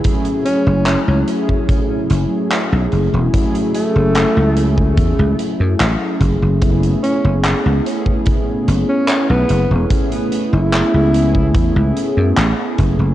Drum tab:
HH |xxx-x-x-x-x-x-x-|xxx-x-x-x-x-x-x-|xxx-x-x-x-x-x-x-|xxx-x-x-x-x-x-x-|
CP |----x-------x---|----x-------x---|----x-------x---|----x-------x---|
BD |o------oo-------|o------oo-----o-|o------oo-------|o------oo-----o-|